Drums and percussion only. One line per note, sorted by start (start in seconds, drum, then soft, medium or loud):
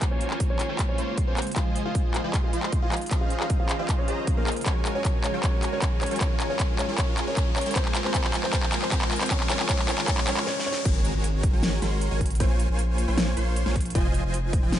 0.01 kick medium
0.01 clap medium
0.01 closed hi-hat medium
0.21 closed hi-hat medium
0.30 clap soft
0.40 kick medium
0.40 closed hi-hat medium
0.59 clap medium
0.59 closed hi-hat medium
0.79 kick medium
0.79 clap medium
0.79 closed hi-hat medium
0.98 closed hi-hat medium
1.18 kick medium
1.18 closed hi-hat medium
1.37 clap medium
1.37 closed hi-hat soft
1.42 closed hi-hat medium
1.47 closed hi-hat soft
1.51 closed hi-hat medium
1.56 kick medium
1.56 clap medium
1.56 closed hi-hat medium
1.76 closed hi-hat medium
1.95 kick loud
1.95 closed hi-hat medium
2.14 clap medium
2.14 closed hi-hat medium
2.34 kick medium
2.34 clap medium
2.34 closed hi-hat medium
2.53 closed hi-hat medium
2.63 clap medium
2.72 kick medium
2.72 closed hi-hat medium
2.92 clap medium
2.92 closed hi-hat soft
2.97 closed hi-hat medium
3.01 closed hi-hat soft
3.06 closed hi-hat medium
3.11 kick loud
3.11 clap medium
3.11 closed hi-hat medium
3.30 closed hi-hat medium
3.40 clap medium
3.50 kick loud
3.50 closed hi-hat medium
3.69 clap medium
3.69 closed hi-hat medium
3.89 kick medium
3.89 clap medium
3.89 closed hi-hat medium
4.08 closed hi-hat medium
4.27 kick medium
4.27 closed hi-hat medium
4.47 clap medium
4.47 closed hi-hat soft
4.52 closed hi-hat medium
4.56 closed hi-hat soft
4.61 closed hi-hat medium
4.66 kick medium
4.66 clap medium
4.66 closed hi-hat medium
4.85 clap medium
4.85 closed hi-hat medium
5.05 kick loud
5.05 clap medium
5.05 closed hi-hat medium
5.24 clap medium
5.24 closed hi-hat medium
5.43 kick loud
5.43 clap medium
5.43 closed hi-hat medium
5.63 clap medium
5.63 closed hi-hat medium
5.82 kick loud
5.82 clap medium
5.82 closed hi-hat medium
6.01 clap medium
6.01 closed hi-hat soft
6.06 closed hi-hat medium
6.11 closed hi-hat soft
6.16 closed hi-hat medium
6.21 kick loud
6.21 clap medium
6.21 closed hi-hat medium
6.40 clap medium
6.40 closed hi-hat medium
6.59 kick loud
6.59 clap medium
6.59 closed hi-hat medium
6.79 clap medium
6.79 closed hi-hat medium
6.98 kick medium
6.98 clap medium
6.98 closed hi-hat medium
7.17 clap medium
7.17 closed hi-hat medium
7.37 kick loud
7.37 clap medium
7.37 closed hi-hat medium
7.56 clap medium
7.56 closed hi-hat soft
7.61 closed hi-hat medium
7.66 closed hi-hat soft
7.71 closed hi-hat medium
7.76 kick loud
7.76 clap medium
7.76 closed hi-hat medium
7.85 clap medium
7.95 clap loud
7.95 closed hi-hat medium
8.05 clap medium
8.14 kick loud
8.14 clap loud
8.14 closed hi-hat medium
8.24 clap medium
8.34 clap loud
8.34 closed hi-hat medium
8.44 clap medium
8.53 kick loud
8.53 clap loud
8.53 closed hi-hat medium
8.63 clap medium
8.72 clap loud
8.72 closed hi-hat medium
8.82 clap medium
8.92 kick loud
8.92 clap loud
8.92 closed hi-hat medium
9.02 clap medium
9.11 clap medium
9.11 closed hi-hat soft
9.16 closed hi-hat medium
9.21 clap medium
9.21 closed hi-hat medium
9.26 closed hi-hat medium
9.31 kick medium
9.31 clap loud
9.31 closed hi-hat medium
9.40 clap medium
9.50 clap loud
9.50 closed hi-hat medium
9.60 clap loud
9.69 kick loud
9.69 clap loud
9.69 closed hi-hat medium
9.79 clap medium
9.89 clap loud
9.89 closed hi-hat medium
9.98 clap loud
10.08 kick loud
10.08 clap loud
10.08 closed hi-hat medium
10.18 clap medium
10.27 clap loud
10.27 closed hi-hat medium
10.37 clap medium
10.47 snare medium
10.60 snare medium
10.72 snare medium
10.85 kick loud
10.85 closed hi-hat medium
10.85 crash loud
11.05 closed hi-hat medium
11.24 closed hi-hat medium
11.43 kick loud
11.43 closed hi-hat medium
11.63 snare loud
11.63 closed hi-hat medium
11.82 snare soft
11.82 closed hi-hat medium
12.01 closed hi-hat medium
12.21 kick medium
12.21 closed hi-hat medium
12.26 closed hi-hat medium
12.30 closed hi-hat medium
12.35 closed hi-hat medium
12.40 kick loud
12.40 closed hi-hat medium
12.59 closed hi-hat medium
12.79 closed hi-hat medium
12.98 closed hi-hat medium
13.18 snare loud
13.18 closed hi-hat medium
13.37 closed hi-hat medium
13.56 closed hi-hat medium
13.66 snare soft
13.76 kick medium
13.76 closed hi-hat soft
13.81 closed hi-hat medium
13.85 closed hi-hat soft
13.90 closed hi-hat medium
13.95 kick loud
13.95 closed hi-hat medium
14.14 closed hi-hat medium
14.34 closed hi-hat medium
14.53 kick loud
14.53 closed hi-hat medium
14.72 snare loud
14.72 closed hi-hat medium